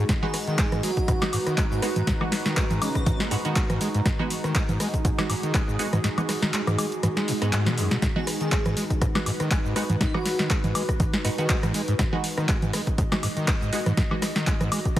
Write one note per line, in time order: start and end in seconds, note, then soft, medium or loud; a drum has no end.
0.00 15.00 G#3 medium
0.00 15.00 D#4 medium
0.00 15.00 F#4 medium
0.09 0.13 G#2 loud
0.09 4.04 B4 loud
0.09 kick loud
0.09 snare medium
0.09 closed hi-hat medium
0.09 shaker soft
0.23 0.36 G#3 loud
0.23 0.26 G#3 medium
0.23 0.36 B3 medium
0.23 0.36 D#4 medium
0.23 0.36 F#4 loud
0.23 0.83 G#4 loud
0.23 low conga medium
0.34 cross-stick medium
0.34 open hi-hat loud
0.34 shaker medium
0.47 0.57 D#3 loud
0.47 closed hi-hat soft
0.47 shaker soft
0.59 0.66 G#3 loud
0.59 kick loud
0.59 clap loud
0.59 closed hi-hat medium
0.59 shaker soft
0.72 0.81 G#2 medium
0.72 cross-stick medium
0.72 closed hi-hat soft
0.72 low conga medium
0.72 shaker soft
0.83 0.91 G#3 loud
0.83 1.53 F#4 loud
0.83 open hi-hat medium
0.83 shaker medium
0.97 kick medium
0.97 closed hi-hat soft
0.97 shaker soft
1.08 1.13 G#2 loud
1.08 kick loud
1.08 cross-stick medium
1.08 closed hi-hat medium
1.08 shaker soft
1.22 1.35 G#3 medium
1.22 1.25 G#3 medium
1.22 1.35 B3 medium
1.22 1.35 D#4 medium
1.22 1.35 F#4 loud
1.22 snare medium
1.22 closed hi-hat soft
1.22 low conga medium
1.22 high woodblock medium
1.22 shaker soft
1.33 1.37 G#2 loud
1.33 open hi-hat loud
1.33 high woodblock medium
1.33 shaker medium
1.47 1.56 D#3 loud
1.47 cross-stick medium
1.47 closed hi-hat medium
1.47 shaker soft
1.58 1.65 G#3 loud
1.58 kick loud
1.58 clap loud
1.58 closed hi-hat medium
1.58 shaker soft
1.71 1.81 G#2 medium
1.71 1.79 F#4 medium
1.71 shaker soft
1.82 1.98 G#3 medium
1.82 1.90 G#3 loud
1.82 1.98 B3 medium
1.82 1.98 D#4 medium
1.82 1.98 F#4 loud
1.82 1.91 F#4 medium
1.82 cross-stick medium
1.82 open hi-hat medium
1.82 shaker medium
1.96 2.02 G#2 loud
1.96 closed hi-hat medium
1.96 low conga medium
1.96 shaker soft
2.07 2.12 G#2 loud
2.07 kick loud
2.07 snare medium
2.07 closed hi-hat medium
2.07 shaker soft
2.21 3.29 G#3 medium
2.21 2.25 G#3 medium
2.21 3.29 B3 medium
2.21 3.29 D#4 medium
2.21 3.29 F#4 medium
2.21 cross-stick medium
2.21 low conga medium
2.21 high woodblock medium
2.32 snare medium
2.32 open hi-hat loud
2.32 shaker medium
2.46 2.55 D#3 loud
2.46 snare medium
2.46 closed hi-hat soft
2.46 shaker soft
2.57 2.64 G#3 loud
2.57 kick loud
2.57 cross-stick medium
2.57 clap loud
2.57 closed hi-hat medium
2.57 shaker soft
2.70 2.80 G#2 medium
2.70 closed hi-hat soft
2.70 low conga medium
2.70 shaker soft
2.82 2.89 G#3 loud
2.82 3.31 C#4 loud
2.82 open hi-hat medium
2.82 high woodblock medium
2.82 shaker medium
2.95 kick medium
2.95 cross-stick medium
2.95 closed hi-hat soft
2.95 shaker soft
3.06 3.11 G#2 loud
3.06 kick loud
3.06 closed hi-hat medium
3.06 low conga medium
3.06 shaker soft
3.20 3.24 G#3 medium
3.20 snare medium
3.20 closed hi-hat soft
3.20 shaker soft
3.31 3.36 G#2 loud
3.31 3.43 G#3 medium
3.31 3.43 B3 medium
3.31 3.43 D#4 medium
3.31 3.43 F#4 medium
3.31 cross-stick medium
3.31 open hi-hat loud
3.31 shaker medium
3.45 3.54 D#3 loud
3.45 3.67 G#3 medium
3.45 3.67 B3 medium
3.45 3.67 D#4 medium
3.45 3.67 F#4 loud
3.45 closed hi-hat medium
3.45 shaker soft
3.56 3.64 G#3 loud
3.56 kick loud
3.56 clap loud
3.56 closed hi-hat medium
3.56 shaker soft
3.70 3.79 G#2 medium
3.70 cross-stick medium
3.70 closed hi-hat soft
3.70 low conga medium
3.70 shaker soft
3.81 3.88 G#3 loud
3.81 open hi-hat medium
3.81 shaker medium
3.94 4.01 G#2 loud
3.94 closed hi-hat medium
3.94 shaker soft
4.06 4.10 G#2 loud
4.06 8.01 G#4 loud
4.06 kick loud
4.06 cross-stick medium
4.06 snare medium
4.06 closed hi-hat medium
4.06 shaker soft
4.19 4.32 G#3 loud
4.19 4.23 G#3 medium
4.19 4.32 B3 medium
4.19 4.32 D#4 medium
4.19 4.32 F#4 loud
4.19 low conga medium
4.30 open hi-hat loud
4.30 shaker medium
4.44 4.53 D#3 loud
4.44 cross-stick medium
4.44 closed hi-hat soft
4.44 shaker soft
4.55 4.63 G#3 loud
4.55 kick loud
4.55 clap loud
4.55 closed hi-hat medium
4.55 shaker soft
4.69 4.78 G#2 medium
4.69 closed hi-hat soft
4.69 low conga medium
4.69 shaker soft
4.80 4.87 G#3 loud
4.80 cross-stick medium
4.80 open hi-hat medium
4.80 shaker medium
4.94 kick medium
4.94 closed hi-hat soft
4.94 shaker soft
5.05 5.09 G#2 loud
5.05 kick loud
5.05 closed hi-hat medium
5.05 shaker soft
5.18 5.22 G#3 medium
5.18 5.31 G#3 medium
5.18 5.31 B3 medium
5.18 5.31 D#4 medium
5.18 5.31 F#4 loud
5.18 cross-stick medium
5.18 snare medium
5.18 closed hi-hat soft
5.18 low conga medium
5.18 high woodblock medium
5.18 shaker soft
5.30 5.34 G#2 loud
5.30 open hi-hat loud
5.30 high woodblock medium
5.30 shaker medium
5.43 5.52 D#3 loud
5.43 closed hi-hat medium
5.43 shaker soft
5.54 5.62 G#3 loud
5.54 kick loud
5.54 cross-stick medium
5.54 clap loud
5.54 closed hi-hat medium
5.54 shaker soft
5.68 5.77 G#2 medium
5.68 shaker soft
5.79 5.87 G#3 loud
5.79 5.94 G#3 medium
5.79 5.94 B3 medium
5.79 5.94 D#4 medium
5.79 5.94 F#4 loud
5.79 open hi-hat medium
5.79 shaker medium
5.93 5.99 G#2 loud
5.93 cross-stick medium
5.93 closed hi-hat medium
5.93 low conga medium
5.93 shaker soft
6.04 6.08 G#2 loud
6.04 snare medium
6.04 closed hi-hat medium
6.04 shaker soft
6.18 6.21 G#3 medium
6.18 7.25 G#3 medium
6.18 7.25 B3 medium
6.18 7.25 D#4 medium
6.18 7.25 F#4 medium
6.18 closed hi-hat soft
6.18 low conga medium
6.18 high woodblock medium
6.18 shaker soft
6.29 cross-stick medium
6.29 snare medium
6.29 open hi-hat loud
6.29 shaker medium
6.42 6.52 D#3 loud
6.42 snare medium
6.42 closed hi-hat soft
6.42 shaker soft
6.53 6.61 G#3 loud
6.53 clap loud
6.53 closed hi-hat medium
6.53 shaker soft
6.67 6.76 G#2 medium
6.67 cross-stick medium
6.67 closed hi-hat soft
6.67 low conga medium
6.67 high woodblock medium
6.67 shaker soft
6.78 6.86 G#3 loud
6.78 open hi-hat medium
6.78 high woodblock medium
6.78 shaker medium
6.92 closed hi-hat soft
6.92 shaker soft
7.03 7.08 G#2 loud
7.03 cross-stick medium
7.03 closed hi-hat medium
7.03 swell medium
7.03 low conga medium
7.03 shaker soft
7.17 7.29 G#3 medium
7.17 snare medium
7.17 closed hi-hat soft
7.17 shaker soft
7.28 7.32 G#2 medium
7.28 open hi-hat loud
7.28 shaker medium
7.42 7.51 G#2 medium
7.42 7.55 G#3 medium
7.42 7.55 B3 medium
7.42 7.55 D#4 medium
7.42 7.55 F#4 medium
7.42 cross-stick medium
7.42 closed hi-hat medium
7.42 shaker soft
7.53 7.68 G#2 medium
7.53 snare medium
7.53 clap loud
7.53 closed hi-hat medium
7.53 shaker soft
7.66 7.79 B2 medium
7.66 snare medium
7.66 closed hi-hat soft
7.66 low conga medium
7.66 shaker soft
7.77 7.89 F#2 loud
7.77 open hi-hat medium
7.77 shaker medium
7.91 7.97 B2 medium
7.91 snare medium
7.91 closed hi-hat medium
7.91 shaker soft
8.02 8.07 G#2 loud
8.02 11.98 B4 loud
8.02 kick loud
8.02 snare medium
8.02 closed hi-hat medium
8.02 shaker soft
8.16 8.20 G#3 medium
8.16 8.29 G#3 loud
8.16 8.29 B3 medium
8.16 8.29 D#4 medium
8.16 8.29 F#4 loud
8.16 8.85 G#4 loud
8.16 low conga medium
8.27 cross-stick medium
8.27 open hi-hat loud
8.27 shaker medium
8.41 8.50 D#3 loud
8.41 closed hi-hat soft
8.41 shaker soft
8.52 8.59 G#3 loud
8.52 kick loud
8.52 clap loud
8.52 closed hi-hat medium
8.52 shaker soft
8.66 8.75 G#2 medium
8.66 cross-stick medium
8.66 closed hi-hat soft
8.66 low conga loud
8.66 shaker soft
8.77 8.84 G#3 loud
8.77 open hi-hat loud
8.77 shaker medium
8.90 kick medium
8.90 closed hi-hat soft
8.90 shaker soft
9.02 9.06 G#2 loud
9.02 kick loud
9.02 cross-stick medium
9.02 closed hi-hat medium
9.02 shaker soft
9.15 9.19 G#3 medium
9.15 9.28 G#3 medium
9.15 9.28 B3 medium
9.15 9.28 D#4 medium
9.15 9.28 F#4 loud
9.15 snare medium
9.15 closed hi-hat soft
9.15 low conga loud
9.15 high woodblock medium
9.15 shaker soft
9.26 9.31 G#2 loud
9.26 open hi-hat loud
9.26 high woodblock medium
9.26 shaker medium
9.40 9.49 D#3 loud
9.40 cross-stick medium
9.40 closed hi-hat medium
9.40 shaker soft
9.51 9.59 G#3 loud
9.51 kick loud
9.51 clap loud
9.51 closed hi-hat medium
9.51 shaker soft
9.65 9.74 G#2 medium
9.65 shaker soft
9.76 9.83 G#3 loud
9.76 9.91 G#3 medium
9.76 9.91 B3 medium
9.76 9.91 D#4 medium
9.76 9.91 F#4 loud
9.76 cross-stick medium
9.76 open hi-hat medium
9.76 shaker medium
9.89 9.96 G#2 loud
9.89 closed hi-hat medium
9.89 low conga loud
9.89 shaker soft
10.01 10.05 G#2 loud
10.01 10.12 D#4 loud
10.01 kick loud
10.01 snare medium
10.01 closed hi-hat medium
10.01 shaker soft
10.14 10.18 G#3 medium
10.14 11.22 G#3 medium
10.14 11.22 B3 medium
10.14 11.22 D#4 medium
10.14 10.50 F#4 loud
10.14 11.22 F#4 medium
10.14 cross-stick medium
10.14 low conga medium
10.14 high woodblock medium
10.26 snare medium
10.26 open hi-hat loud
10.26 shaker medium
10.39 10.48 D#3 loud
10.39 snare medium
10.39 closed hi-hat soft
10.39 shaker soft
10.50 10.58 G#3 loud
10.50 kick loud
10.50 cross-stick medium
10.50 clap loud
10.50 closed hi-hat medium
10.50 shaker soft
10.64 10.73 G#2 medium
10.64 closed hi-hat soft
10.64 low conga loud
10.64 shaker soft
10.75 10.83 G#3 loud
10.75 open hi-hat loud
10.75 high woodblock medium
10.75 shaker medium
10.89 kick medium
10.89 cross-stick medium
10.89 closed hi-hat soft
10.89 shaker soft
11.00 11.04 G#2 loud
11.00 kick loud
11.00 closed hi-hat medium
11.00 low conga medium
11.00 shaker soft
11.13 11.17 G#3 medium
11.13 snare medium
11.13 closed hi-hat soft
11.13 shaker soft
11.25 11.29 G#2 loud
11.25 11.36 G#3 medium
11.25 11.36 B3 medium
11.25 11.36 D#4 medium
11.25 11.36 F#4 medium
11.25 cross-stick medium
11.25 open hi-hat loud
11.25 shaker medium
11.38 11.47 D#3 loud
11.38 11.61 G#3 medium
11.38 11.61 B3 medium
11.38 11.61 D#4 medium
11.38 11.61 F#4 loud
11.38 closed hi-hat medium
11.38 shaker soft
11.49 11.57 G#3 loud
11.49 kick loud
11.49 clap loud
11.49 closed hi-hat medium
11.49 shaker soft
11.63 11.72 G#2 medium
11.63 cross-stick medium
11.63 closed hi-hat soft
11.63 low conga medium
11.63 shaker soft
11.74 11.82 G#3 loud
11.74 open hi-hat loud
11.74 shaker medium
11.88 11.94 G#2 loud
11.88 closed hi-hat medium
11.88 shaker soft
11.99 12.04 G#2 loud
11.99 15.00 D#5 loud
11.99 kick loud
11.99 cross-stick medium
11.99 snare medium
11.99 closed hi-hat medium
11.99 shaker soft
12.13 12.16 G#3 medium
12.13 12.26 G#3 loud
12.13 12.26 B3 medium
12.13 12.26 D#4 medium
12.13 12.26 F#4 loud
12.13 low conga medium
12.24 open hi-hat loud
12.24 shaker medium
12.37 12.47 D#3 loud
12.37 cross-stick medium
12.37 closed hi-hat soft
12.37 shaker soft
12.49 12.56 G#3 loud
12.49 kick loud
12.49 clap loud
12.49 closed hi-hat medium
12.49 shaker soft
12.62 12.71 G#2 medium
12.62 closed hi-hat soft
12.62 low conga medium
12.62 shaker soft
12.73 12.81 G#3 loud
12.73 cross-stick medium
12.73 open hi-hat loud
12.73 shaker medium
12.87 kick medium
12.87 closed hi-hat soft
12.87 shaker soft
12.98 13.03 G#2 loud
12.98 kick loud
12.98 closed hi-hat medium
12.98 shaker soft
13.12 13.16 G#3 medium
13.12 13.25 G#3 medium
13.12 13.25 B3 medium
13.12 13.25 D#4 medium
13.12 13.25 F#4 loud
13.12 cross-stick medium
13.12 snare medium
13.12 closed hi-hat soft
13.12 low conga loud
13.12 high woodblock medium
13.12 shaker soft
13.23 13.27 G#2 loud
13.23 open hi-hat loud
13.23 high woodblock medium
13.23 shaker medium
13.37 13.46 D#3 loud
13.37 closed hi-hat medium
13.37 shaker soft
13.48 13.55 G#3 loud
13.48 kick loud
13.48 cross-stick medium
13.48 clap loud
13.48 closed hi-hat medium
13.48 shaker soft
13.61 13.71 G#2 medium
13.61 shaker soft
13.73 13.80 G#3 loud
13.73 13.88 G#3 medium
13.73 13.88 B3 medium
13.73 13.88 D#4 medium
13.73 13.88 F#4 loud
13.73 open hi-hat loud
13.73 shaker medium
13.86 13.92 G#2 loud
13.86 cross-stick medium
13.86 closed hi-hat medium
13.86 low conga medium
13.86 shaker soft
13.97 14.02 G#2 loud
13.97 kick loud
13.97 snare medium
13.97 closed hi-hat medium
13.97 shaker soft
14.11 14.15 G#3 medium
14.11 15.00 G#3 medium
14.11 15.00 B3 medium
14.11 15.00 D#4 medium
14.11 15.00 F#4 medium
14.11 low conga medium
14.11 high woodblock medium
14.22 cross-stick medium
14.22 snare medium
14.22 open hi-hat loud
14.22 shaker medium
14.36 14.45 D#3 loud
14.36 snare medium
14.36 closed hi-hat soft
14.36 shaker soft
14.47 14.54 G#3 loud
14.47 kick loud
14.47 clap loud
14.47 closed hi-hat medium
14.47 shaker soft
14.61 14.70 G#2 medium
14.61 cross-stick medium
14.61 closed hi-hat soft
14.61 low conga medium
14.61 shaker soft
14.72 14.79 G#3 loud
14.72 open hi-hat loud
14.72 high woodblock medium
14.72 shaker medium
14.85 kick medium
14.85 closed hi-hat soft
14.85 shaker soft
14.97 15.00 G#2 loud
14.97 kick loud
14.97 cross-stick medium
14.97 closed hi-hat medium
14.97 low conga medium